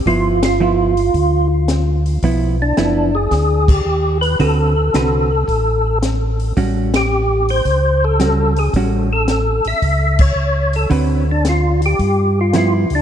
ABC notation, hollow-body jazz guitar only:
X:1
M:4/4
L:1/8
Q:"Swing" 1/4=111
K:G
V:1 name="Hollow-body jazz guitar"
[=F,B,E] z [F,B,E] z4 z | [=F,B,E] z [F,B,E] z4 z | [D,CFB] z [D,CFB] z4 z | [G,^CF] z4 z [G,CF] z |
[G,^CF] z6 z | [D,CFB] z4 z [=F,B,E] z |]